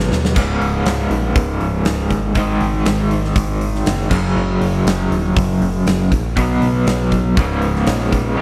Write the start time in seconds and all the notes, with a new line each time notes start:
Already playing: B2 F#3 B3
0.00 snare
0.12 D#2, snare
0.25 snare
0.34 C#1 C#2 G#2 C#3, kick, crash
0.60 C#1, open hi-hat
0.84 C#1, snare, open hi-hat
1.10 A#1, open hi-hat
1.35 C#1, kick, open hi-hat
1.61 C#1, open hi-hat
1.85 C#1, snare, open hi-hat
2.10 G#1, kick, open hi-hat
2.35 G#1 G#2 D#3 G#3, kick, open hi-hat
2.61 G#1, open hi-hat
2.85 G#1, snare, open hi-hat
3.11 open hi-hat
3.24 snare
3.36 G#1, kick, open hi-hat
3.61 open hi-hat
3.75 snare
3.86 F#1, snare, open hi-hat
4.09 F#1 F#2 C#3 F#3, kick, crash
4.36 F#1
4.61 F#1, open hi-hat
4.85 F#1, snare, open hi-hat
5.10 D#1, open hi-hat
5.36 F#1, kick, open hi-hat
5.61 F#1, open hi-hat
5.86 F#1, snare, open hi-hat
6.11 A#1, kick, open hi-hat
6.36 B1 B2 F#3 B3, kick, open hi-hat
6.62 B1, open hi-hat
6.87 B1, snare, open hi-hat
7.12 kick, open hi-hat
7.36 C#1 C#2 G#2 C#3, kick, open hi-hat
7.62 open hi-hat
7.76 snare
7.87 A#1, snare, open hi-hat
8.12 A#1, kick, open hi-hat
8.36 C#2 G#2 C#3